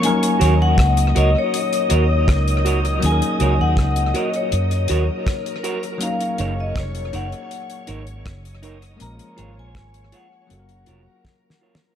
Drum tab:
HH |x--x--x-----x--x--x-----x--x--x-----x--x--x--x--|x--x--x-----x--x--x--x--x--x--x-----x--x--x--x--|x--x--x-----x--x--x--x--x--x--x--x--x--x--x--x--|x--x--x-----x--x--x-----x--x--x-----------------|
SD |------------r-----------------------r-----------|------------r-----------------------r-----------|------------r-----------------------r-----------|------------r-----------------------o---o---o---|
BD |------------o-----------------------o-----------|------------o-----------------------o-----------|------------o-----------------------o-----------|------------o-----------------------o-----------|